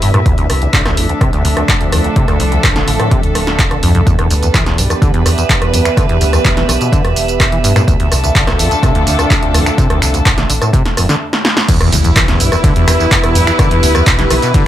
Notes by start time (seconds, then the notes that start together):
Already playing: E1 E3 B3 D4 E4 G4 B4 E5
0.02 G2, open hi-hat
0.14 G2 A2, cross-stick, closed hi-hat
0.26 D2 D3 F3 A3 C4 D4, kick, closed hi-hat
0.38 D2, closed hi-hat
0.49 C2 D2, cross-stick, open hi-hat
0.62 D2, closed hi-hat
0.73 A1 D3 A4, kick, clap, closed hi-hat
0.86 D2, cross-stick, snare, closed hi-hat
0.97 A1 F2, open hi-hat
1.09 D2, closed hi-hat
1.21 C2 C3, kick, cross-stick, closed hi-hat
1.33 D2, closed hi-hat
1.45 D2, open hi-hat
1.57 D2, cross-stick, closed hi-hat
1.69 D2, kick, clap, closed hi-hat
1.81 D2, closed hi-hat
1.92 D2 F2, cross-stick, open hi-hat
2.04 D2, closed hi-hat
2.16 C3, kick, closed hi-hat
2.28 D2, cross-stick, closed hi-hat
2.40 C2 D2, open hi-hat
2.52 D2, closed hi-hat
2.64 A1 D2, kick, cross-stick, clap, closed hi-hat
2.76 D3, snare, closed hi-hat
2.88 A1 D3, open hi-hat
2.99 A2, cross-stick, closed hi-hat
3.11 C3, kick, closed hi-hat
3.23 D2, closed hi-hat
3.35 D1, cross-stick, open hi-hat
3.47 snare, closed hi-hat
3.59 kick, clap, closed hi-hat
3.71 D3, cross-stick, closed hi-hat
3.83 D2 F2, open hi-hat
3.95 C2 F2, closed hi-hat
4.07 E2 E3 B3 D4 G4, kick, closed hi-hat, tambourine
4.19 E2, cross-stick, closed hi-hat
4.30 D2 E2 B4, open hi-hat, tambourine
4.42 E2, closed hi-hat, tambourine
4.54 B1 E3, kick, cross-stick, clap, closed hi-hat, tambourine
4.66 E2, snare, closed hi-hat
4.78 B1 G2, open hi-hat, tambourine
4.90 E2, cross-stick, closed hi-hat, tambourine
5.02 D2 D3, kick, closed hi-hat, tambourine
5.14 E2, closed hi-hat
5.25 E2, cross-stick, open hi-hat, tambourine
5.36 E2 E5, closed hi-hat, tambourine
5.49 E2, kick, clap, closed hi-hat, tambourine
5.61 E2, cross-stick, closed hi-hat
5.73 E2 G2, open hi-hat, tambourine
5.85 E2, finger snap, closed hi-hat, tambourine
5.97 D3, kick, cross-stick, closed hi-hat, tambourine
6.09 E2, closed hi-hat
6.21 D2 E2, open hi-hat, tambourine
6.33 E2, cross-stick, closed hi-hat, tambourine
6.45 B1 E2, kick, clap, closed hi-hat, tambourine
6.57 E3, snare, closed hi-hat
6.69 B1 E3, cross-stick, open hi-hat, tambourine
6.81 B2, closed hi-hat, tambourine
6.92 D3, kick, closed hi-hat, tambourine
7.04 E2, cross-stick, closed hi-hat
7.16 E1, open hi-hat, tambourine
7.28 closed hi-hat, tambourine
7.40 kick, cross-stick, clap, closed hi-hat, tambourine
7.52 E3, closed hi-hat
7.64 G2, open hi-hat, tambourine
7.76 G2 A2, finger snap, cross-stick, closed hi-hat, tambourine
7.88 D2 D3 A3 C4 D4 F4, kick, closed hi-hat, tambourine
7.98 D2 A4, closed hi-hat
8.11 C2 D2, cross-stick, open hi-hat, tambourine
8.24 D2, closed hi-hat, tambourine
8.35 A1 D3, kick, clap, closed hi-hat, tambourine
8.47 D2, cross-stick, snare, closed hi-hat
8.59 A1 F2, open hi-hat, tambourine
8.71 D2, closed hi-hat, tambourine
8.83 C2 C3, kick, cross-stick, closed hi-hat, tambourine
8.95 D2, closed hi-hat
9.07 D2, open hi-hat, tambourine
9.19 D2, cross-stick, closed hi-hat, tambourine
9.30 D2, kick, clap, closed hi-hat, tambourine
9.42 D2, closed hi-hat
9.54 D2 F2, cross-stick, open hi-hat, tambourine
9.66 D2, finger snap, closed hi-hat, tambourine
9.78 C3, kick, closed hi-hat, tambourine
9.90 D2, cross-stick, closed hi-hat
10.02 C2 D2, finger snap, open hi-hat, tambourine
10.14 D2, closed hi-hat, tambourine
10.26 A1 D2, kick, cross-stick, clap, closed hi-hat, tambourine
10.38 D3, snare, closed hi-hat
10.49 A1 D3, open hi-hat, tambourine
10.61 A2, cross-stick, closed hi-hat, tambourine
10.73 C3, kick, closed hi-hat, tambourine
10.86 snare, closed hi-hat
10.97 D1 F2, cross-stick, open hi-hat, tambourine
11.09 D3, snare, closed hi-hat, tambourine
11.33 snare
11.45 snare
11.57 snare
11.68 E2 E3 B3 D4 E4 G4, kick, closed hi-hat, ride, tambourine, crash, impact
11.81 E2, cross-stick, closed hi-hat
11.92 D2 E2, open hi-hat, ride, tambourine
12.04 E2, closed hi-hat, tambourine
12.09 B4
12.16 B1 E3, kick, cross-stick, clap, closed hi-hat, ride, tambourine
12.28 E2, snare, closed hi-hat
12.40 B1 G2, open hi-hat, ride, tambourine
12.52 E2, cross-stick, closed hi-hat, tambourine
12.64 D2 D3, kick, closed hi-hat, ride, tambourine
12.76 E2, closed hi-hat
12.88 E2, finger snap, cross-stick, open hi-hat, ride, tambourine
13.00 E2, tambourine
13.11 E2, kick, clap, closed hi-hat, ride, tambourine
13.24 E2, cross-stick, closed hi-hat
13.35 E2 G2, open hi-hat, ride, tambourine
13.47 E2, finger snap, closed hi-hat, tambourine
13.59 D3, kick, cross-stick, closed hi-hat, ride, tambourine
13.71 E2, closed hi-hat
13.83 D2 E2, open hi-hat, ride, tambourine
13.95 E2, cross-stick, closed hi-hat, tambourine
14.07 B1 E2, kick, clap, closed hi-hat, ride, tambourine
14.19 E3, snare, closed hi-hat
14.30 B1 E3, cross-stick, open hi-hat, ride, tambourine
14.42 B2, closed hi-hat, tambourine
14.54 D3, kick, closed hi-hat, ride, tambourine